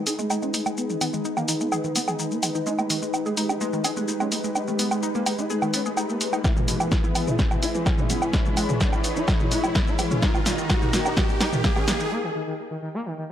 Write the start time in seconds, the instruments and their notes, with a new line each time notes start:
Already playing: ambient pad G#3 D#4 B4, analog synth pad D#4 G#4 B4, riser
0.07 analog synth lead D#4, synth arpeggio sound G#4, open hi-hat, shaker
0.19 synth arpeggio sound G#3, analog synth lead G#3, shaker
0.30 analog synth lead G#3, synth arpeggio sound D#4, low woodblock, shaker
0.42 synth arpeggio sound G#3, analog synth lead C#4, shaker
0.54 analog synth lead G#3, synth arpeggio sound D#4, open hi-hat, shaker
0.66 synth arpeggio sound G#3, analog synth lead G#3, low woodblock, shaker
0.77 analog synth lead B3, shaker
0.90 analog synth lead D#3, synth arpeggio sound D#3, shaker
1.01 analog synth lead D#3, synth arpeggio sound B3, open hi-hat, low woodblock, shaker
1.13 analog synth lead D#3, synth arpeggio sound G#3, shaker
1.25 synth arpeggio sound D#4, shaker
1.37 analog synth lead D#3, synth arpeggio sound A#3, low woodblock, shaker
1.48 analog synth lead D#3, synth arpeggio sound D#4, open hi-hat, shaker
1.60 synth arpeggio sound G#3, analog synth lead B3, shaker
1.72 analog synth lead D#3, synth arpeggio sound G#4, low woodblock, shaker
1.84 analog synth lead D#3, synth arpeggio sound D#3, shaker
1.96 synth arpeggio sound B3, analog synth lead B3, open hi-hat, shaker
2.08 analog synth lead D#3, synth arpeggio sound G#4, low woodblock, shaker
2.19 analog synth lead D#3, synth arpeggio sound D#4, shaker
2.31 analog synth lead A#3, shaker
2.43 analog synth lead D#3, synth arpeggio sound G#3, open hi-hat, low woodblock, shaker
2.55 analog synth lead D#3, synth arpeggio sound D#4, shaker
2.66 synth arpeggio sound G#3, analog synth lead D#4, analog synth pad G4, shaker
2.78 synth arpeggio sound G#3, analog synth lead G#3, low woodblock, shaker
2.90 synth arpeggio sound D#3, analog synth lead G#3, open hi-hat, shaker
3.02 analog synth lead G#3, synth arpeggio sound G#3, shaker
3.14 low woodblock, shaker
3.26 analog synth lead G#3, synth arpeggio sound G#4, shaker
3.37 analog synth lead G#3, synth arpeggio sound D#4, open hi-hat, shaker
3.49 analog synth lead D#4, low woodblock, shaker
3.61 synth arpeggio sound G#3, analog synth lead G#3, shaker
3.73 synth arpeggio sound D#3, analog synth lead G#3, shaker
3.84 analog synth lead D#4, synth arpeggio sound G#4, open hi-hat, low woodblock, shaker
3.97 synth arpeggio sound G#3, analog synth lead G#3, shaker
4.08 analog synth lead G#3, synth arpeggio sound D#4, shaker
4.20 synth arpeggio sound G#3, analog synth lead C#4, low woodblock, shaker
4.32 analog synth lead G#3, synth arpeggio sound D#4, open hi-hat, shaker
4.44 synth arpeggio sound G#3, analog synth lead G#3, shaker
4.55 analog synth lead D#4, low woodblock, shaker
4.68 synth arpeggio sound D#3, analog synth lead G#3, shaker
4.79 analog synth lead G#3, synth arpeggio sound B3, open hi-hat, shaker
4.91 analog synth lead G#3, synth arpeggio sound G#3, low woodblock, shaker
5.03 synth arpeggio sound D#4, shaker
5.15 analog synth lead G#3, synth arpeggio sound A#3, shaker
5.26 analog synth lead G#3, synth arpeggio sound D#4, open hi-hat, low woodblock, shaker
5.38 synth arpeggio sound G#3, analog synth lead D#4, shaker
5.50 analog synth lead G#3, synth arpeggio sound G#4, shaker
5.62 synth arpeggio sound D#3, analog synth lead G#3, low woodblock, shaker
5.74 synth arpeggio sound B3, analog synth lead C#4, open hi-hat, shaker
5.86 analog synth lead G#3, synth arpeggio sound G#4, shaker
5.97 analog synth lead G#3, synth arpeggio sound D#4, low woodblock, shaker
6.09 analog synth lead A#3, shaker
6.21 synth arpeggio sound G#3, analog synth lead G#3, open hi-hat, shaker
6.33 analog synth lead G#3, synth arpeggio sound D#4, low woodblock, shaker
6.44 analog synth pad E3 E4 G#4 B5, synth arpeggio sound E3, analog synth lead E4, ambient pad E4, kick, snare, low woodblock, shaker
6.56 analog synth lead E3, synth arpeggio sound E3, mid tom, shaker
6.68 synth arpeggio sound B2, analog synth lead E3, open hi-hat, shaker
6.80 analog synth lead E3, synth arpeggio sound E3, low woodblock, shaker
6.92 kick, snare, shaker
7.04 analog synth lead E3, synth arpeggio sound E4, shaker
7.15 analog synth lead E3, synth arpeggio sound B3, open hi-hat, low woodblock, shaker
7.27 analog synth lead E4, mid tom, shaker
7.39 analog synth lead E3, synth arpeggio sound E3, kick, snare, shaker
7.51 synth arpeggio sound B2, analog synth lead E3, low woodblock, shaker
7.62 analog synth lead E4, synth arpeggio sound E4, open hi-hat, shaker
7.75 analog synth lead E3, synth arpeggio sound E3, shaker
7.86 analog synth lead E3, synth arpeggio sound C#4, kick, snare, low woodblock, shaker
7.98 synth arpeggio sound E3, analog synth lead D#4, mid tom, shaker
8.10 analog synth lead E3, synth arpeggio sound B3, open hi-hat, shaker
8.22 analog synth lead E3, synth arpeggio sound E3, low woodblock, shaker
8.33 analog synth lead E4, analog synth pad C#5, kick, snare, shaker
8.46 synth arpeggio sound B2, analog synth lead E3, shaker
8.57 analog synth lead E3, synth arpeggio sound G#3, open hi-hat, low woodblock, shaker
8.69 analog synth lead E3, synth arpeggio sound E3, mid tom, shaker
8.81 synth arpeggio sound B3, kick, snare, shaker
8.93 analog synth lead E3, synth arpeggio sound G3, low woodblock, shaker
9.04 analog synth lead E3, synth arpeggio sound B3, open hi-hat, shaker
9.16 synth arpeggio sound E3, analog synth lead E4, shaker
9.28 analog synth lead E3, synth arpeggio sound E4, kick, snare, low woodblock, shaker
9.40 synth arpeggio sound B2, analog synth lead E3, mid tom, shaker
9.51 synth arpeggio sound G#3, analog synth lead E4, open hi-hat, shaker
9.64 analog synth lead E3, synth arpeggio sound E4, low woodblock, shaker
9.75 analog synth lead E3, synth arpeggio sound B3, kick, snare, shaker
9.87 analog synth lead D#4, shaker
9.99 analog synth lead E3, synth arpeggio sound E3, open hi-hat, low woodblock, shaker
10.11 analog synth lead E3, synth arpeggio sound C#4, mid tom, shaker
10.22 analog synth pad D#3 D#4 G4 A#4 A#5, synth arpeggio sound D#3, analog synth lead D#4, ambient pad D#4 G4, kick, snare, shaker
10.35 analog synth lead D#3, synth arpeggio sound D#3, ambient pad A#4, low woodblock, shaker
10.46 synth arpeggio sound A#2, analog synth lead D#3, snare, open hi-hat, shaker
10.58 analog synth lead D#3, synth arpeggio sound D#3, shaker
10.70 kick, snare, low woodblock, shaker
10.82 analog synth lead D#3, synth arpeggio sound D#4, mid tom, shaker
10.93 analog synth lead D#3, synth arpeggio sound A#3, snare, open hi-hat, shaker
11.05 analog synth lead D#4, low woodblock, shaker
11.17 analog synth lead D#3, synth arpeggio sound D#3, kick, snare, shaker
11.29 synth arpeggio sound A#2, analog synth lead D#3, shaker
11.40 analog synth lead D#4, synth arpeggio sound D#4, snare, open hi-hat, low woodblock, shaker
11.53 analog synth lead D#3, synth arpeggio sound D#3, mid tom, shaker
11.64 analog synth lead D#3, synth arpeggio sound A#3, kick, snare, shaker
11.76 synth arpeggio sound D#3, analog synth lead C#4, low woodblock, shaker
11.88 analog synth lead D#3, synth arpeggio sound A#3, snare, open hi-hat, shaker
12.00 analog synth lead D#3, synth arpeggio sound D#3, shaker
12.11 analog synth lead A#3
12.23 analog synth lead D#3
12.35 analog synth lead D#3
12.47 analog synth lead D#3
12.71 analog synth lead D#3
12.82 analog synth lead D#3
12.94 analog synth lead A#3
13.06 analog synth lead D#3
13.18 analog synth lead D#3